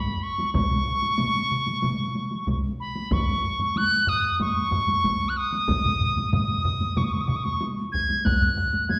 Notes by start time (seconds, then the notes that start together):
Already playing: B5
0.23 C#6
0.38 taiko high
0.54 C#6, taiko, taiko mid, taiko high
0.71 taiko mid
0.87 taiko mid
1.02 taiko high
1.18 taiko mid, taiko high
1.51 taiko mid
1.66 taiko high
1.83 taiko mid, taiko high
2.15 taiko high
2.31 taiko high
2.47 taiko, taiko mid, taiko high
2.80 B5
2.96 taiko high
3.11 C#6, taiko, taiko low-mid, taiko high
3.44 taiko low-mid
3.60 taiko low-mid, taiko high
3.76 F#6, taiko high
4.07 D#6, taiko low-mid
4.40 C#6, taiko low-mid, taiko high
4.72 taiko low-mid, taiko high
4.88 taiko high
5.04 taiko, taiko high
5.29 F#6
5.37 D#6
5.53 taiko high
5.68 taiko, taiko low-mid, taiko mid, taiko high
5.84 taiko low-mid, taiko mid
6.00 taiko low-mid, taiko mid
6.17 taiko low-mid, taiko mid, taiko high
6.32 D#6, taiko low-mid, taiko mid, taiko high
6.65 taiko low-mid, taiko mid
6.81 taiko high
6.96 C#6, taiko low-mid, taiko mid, taiko high
7.04 D#6
7.12 C#6
7.21 D#6
7.27 C#6, taiko low-mid, taiko mid
7.36 D#6
7.44 C#6, taiko high
7.61 taiko high
7.92 G#6, taiko
8.09 taiko high
8.25 F#6, taiko, taiko low-mid, taiko high
8.41 taiko low-mid
8.57 taiko low-mid
8.73 taiko high
8.89 G#6, taiko low-mid, taiko high